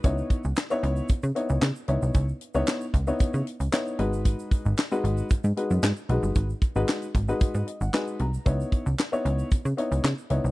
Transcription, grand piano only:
X:1
M:4/4
L:1/16
Q:1/4=114
K:C#m
V:1 name="Grand piano"
[B,DEc]3 z2 [B,DEc]3 z2 [B,DEc]2 z2 [B,DEc]2- | [B,DEc] z2 [B,DEc]2 z2 [B,DEc]3 z2 [B,DEc]2 [G,DFB]2- | [G,DFB]4 z [G,DFB]3 z2 [G,DFB]2 z2 [G,DFB]2- | [G,DFB] z2 [G,DFB]2 z2 [G,DFB]3 d f [G,DFBg]2 ^a2 |
[B,DEc]3 z2 [B,DEc]3 z2 [B,DEc]2 z2 [B,DEc]2 |]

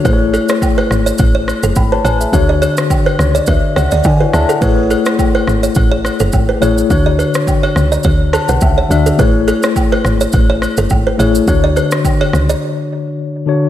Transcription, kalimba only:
X:1
M:4/4
L:1/16
Q:"Swing 16ths" 1/4=105
K:A
V:1 name="Kalimba"
B z A c z B z c z c z A z B c z | z d c z2 B z c B z c d z B z A | B z A c z B z c z c z A z B c z | z d B z2 c z d c z A B z c z A |
B z A c z B z c z c z A z B c z | z d B z2 c z d z8 |]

